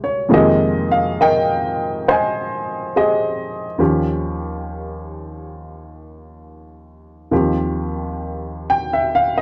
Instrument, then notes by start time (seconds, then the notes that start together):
grand piano
Already playing: C2 C3 G#3 A#3 C4 E4 G4 G#4
0.04 C#5
0.29 F2 C3 D#3 G#3 A#3 F4
0.33 G4 G#4 D#5
0.91 F5
1.21 A#4 D#5 G5
2.08 C5 D#5 G#5
2.96 G4 G#4 D#5
3.78 D#2 D#3 F3 C#4 G4
7.31 D#2 D#3 F3 C4 G4
8.70 G5
8.93 E5
9.15 F5
9.38 D#5